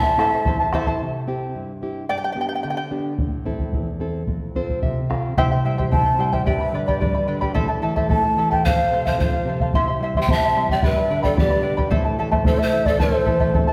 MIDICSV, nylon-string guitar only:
0, 0, Header, 1, 2, 480
1, 0, Start_track
1, 0, Key_signature, 0, "minor"
1, 0, Tempo, 545951
1, 874, Time_signature, 2, 2, 24, 8
1, 12071, End_track
2, 0, Start_track
2, 0, Title_t, "Nylon-string guitar"
2, 0, Program_c, 0, 24
2, 0, Note_on_c, 0, 45, 70
2, 154, Note_on_c, 0, 60, 50
2, 158, Note_on_c, 0, 64, 45
2, 165, Note_on_c, 0, 69, 54
2, 385, Note_off_c, 0, 45, 0
2, 402, Note_on_c, 0, 40, 62
2, 538, Note_off_c, 0, 60, 0
2, 541, Note_off_c, 0, 64, 0
2, 543, Note_off_c, 0, 69, 0
2, 649, Note_on_c, 0, 60, 49
2, 651, Note_on_c, 0, 64, 41
2, 656, Note_on_c, 0, 69, 55
2, 835, Note_off_c, 0, 60, 0
2, 835, Note_off_c, 0, 64, 0
2, 839, Note_off_c, 0, 69, 0
2, 863, Note_off_c, 0, 40, 0
2, 893, Note_on_c, 0, 48, 58
2, 1121, Note_on_c, 0, 60, 43
2, 1125, Note_on_c, 0, 64, 40
2, 1129, Note_on_c, 0, 67, 45
2, 1349, Note_off_c, 0, 48, 0
2, 1366, Note_on_c, 0, 43, 54
2, 1503, Note_off_c, 0, 60, 0
2, 1504, Note_off_c, 0, 64, 0
2, 1507, Note_off_c, 0, 67, 0
2, 1600, Note_on_c, 0, 60, 40
2, 1606, Note_on_c, 0, 64, 37
2, 1608, Note_on_c, 0, 67, 42
2, 1790, Note_off_c, 0, 60, 0
2, 1792, Note_off_c, 0, 64, 0
2, 1795, Note_off_c, 0, 67, 0
2, 1826, Note_off_c, 0, 43, 0
2, 1844, Note_on_c, 0, 43, 57
2, 2069, Note_on_c, 0, 59, 45
2, 2076, Note_on_c, 0, 62, 35
2, 2082, Note_on_c, 0, 67, 45
2, 2306, Note_off_c, 0, 43, 0
2, 2325, Note_on_c, 0, 50, 54
2, 2458, Note_off_c, 0, 59, 0
2, 2460, Note_off_c, 0, 62, 0
2, 2464, Note_off_c, 0, 67, 0
2, 2556, Note_on_c, 0, 59, 40
2, 2562, Note_on_c, 0, 62, 38
2, 2563, Note_on_c, 0, 67, 42
2, 2749, Note_off_c, 0, 59, 0
2, 2751, Note_off_c, 0, 62, 0
2, 2753, Note_off_c, 0, 67, 0
2, 2788, Note_off_c, 0, 50, 0
2, 2802, Note_on_c, 0, 45, 53
2, 3037, Note_on_c, 0, 60, 41
2, 3043, Note_on_c, 0, 64, 41
2, 3045, Note_on_c, 0, 69, 48
2, 3267, Note_off_c, 0, 45, 0
2, 3286, Note_on_c, 0, 40, 53
2, 3423, Note_off_c, 0, 60, 0
2, 3424, Note_off_c, 0, 64, 0
2, 3427, Note_off_c, 0, 69, 0
2, 3517, Note_on_c, 0, 60, 42
2, 3523, Note_on_c, 0, 64, 35
2, 3526, Note_on_c, 0, 69, 44
2, 3711, Note_off_c, 0, 60, 0
2, 3714, Note_off_c, 0, 69, 0
2, 3715, Note_off_c, 0, 64, 0
2, 3749, Note_off_c, 0, 40, 0
2, 3760, Note_on_c, 0, 41, 59
2, 4006, Note_on_c, 0, 60, 47
2, 4008, Note_on_c, 0, 65, 42
2, 4011, Note_on_c, 0, 72, 61
2, 4016, Note_on_c, 0, 69, 46
2, 4226, Note_off_c, 0, 41, 0
2, 4229, Note_off_c, 0, 72, 0
2, 4244, Note_on_c, 0, 76, 57
2, 4246, Note_on_c, 0, 48, 55
2, 4388, Note_off_c, 0, 60, 0
2, 4391, Note_off_c, 0, 65, 0
2, 4395, Note_off_c, 0, 69, 0
2, 4466, Note_off_c, 0, 76, 0
2, 4480, Note_on_c, 0, 60, 41
2, 4482, Note_on_c, 0, 77, 54
2, 4485, Note_on_c, 0, 65, 39
2, 4488, Note_on_c, 0, 69, 44
2, 4673, Note_off_c, 0, 60, 0
2, 4676, Note_off_c, 0, 65, 0
2, 4677, Note_off_c, 0, 69, 0
2, 4705, Note_off_c, 0, 77, 0
2, 4710, Note_off_c, 0, 48, 0
2, 4726, Note_on_c, 0, 48, 64
2, 4966, Note_on_c, 0, 55, 56
2, 5196, Note_off_c, 0, 55, 0
2, 5200, Note_on_c, 0, 60, 56
2, 5434, Note_off_c, 0, 60, 0
2, 5441, Note_on_c, 0, 55, 49
2, 5656, Note_off_c, 0, 48, 0
2, 5675, Note_off_c, 0, 55, 0
2, 5677, Note_on_c, 0, 43, 62
2, 5915, Note_on_c, 0, 50, 51
2, 6151, Note_off_c, 0, 50, 0
2, 6160, Note_on_c, 0, 55, 54
2, 6394, Note_off_c, 0, 55, 0
2, 6400, Note_on_c, 0, 50, 49
2, 6611, Note_off_c, 0, 43, 0
2, 6633, Note_off_c, 0, 50, 0
2, 6638, Note_on_c, 0, 45, 70
2, 6875, Note_on_c, 0, 52, 51
2, 7111, Note_off_c, 0, 52, 0
2, 7118, Note_on_c, 0, 57, 54
2, 7352, Note_off_c, 0, 57, 0
2, 7357, Note_on_c, 0, 52, 48
2, 7570, Note_off_c, 0, 45, 0
2, 7592, Note_off_c, 0, 52, 0
2, 7606, Note_on_c, 0, 41, 65
2, 7836, Note_on_c, 0, 48, 52
2, 8071, Note_off_c, 0, 48, 0
2, 8073, Note_on_c, 0, 53, 53
2, 8307, Note_on_c, 0, 48, 46
2, 8309, Note_off_c, 0, 53, 0
2, 8533, Note_off_c, 0, 41, 0
2, 8543, Note_off_c, 0, 48, 0
2, 8554, Note_on_c, 0, 48, 61
2, 8795, Note_on_c, 0, 55, 55
2, 9030, Note_off_c, 0, 55, 0
2, 9044, Note_on_c, 0, 60, 52
2, 9274, Note_off_c, 0, 60, 0
2, 9278, Note_on_c, 0, 55, 50
2, 9487, Note_off_c, 0, 48, 0
2, 9511, Note_off_c, 0, 55, 0
2, 9521, Note_on_c, 0, 43, 64
2, 9762, Note_on_c, 0, 50, 56
2, 9992, Note_off_c, 0, 50, 0
2, 10002, Note_on_c, 0, 59, 56
2, 10232, Note_off_c, 0, 59, 0
2, 10237, Note_on_c, 0, 50, 47
2, 10449, Note_off_c, 0, 43, 0
2, 10469, Note_off_c, 0, 50, 0
2, 10480, Note_on_c, 0, 45, 68
2, 10719, Note_on_c, 0, 52, 56
2, 10950, Note_off_c, 0, 52, 0
2, 10957, Note_on_c, 0, 57, 54
2, 11189, Note_off_c, 0, 57, 0
2, 11192, Note_on_c, 0, 52, 52
2, 11408, Note_off_c, 0, 45, 0
2, 11426, Note_off_c, 0, 52, 0
2, 11437, Note_on_c, 0, 45, 62
2, 11678, Note_on_c, 0, 52, 53
2, 11908, Note_off_c, 0, 52, 0
2, 11912, Note_on_c, 0, 57, 54
2, 12071, Note_off_c, 0, 45, 0
2, 12071, Note_off_c, 0, 57, 0
2, 12071, End_track
0, 0, End_of_file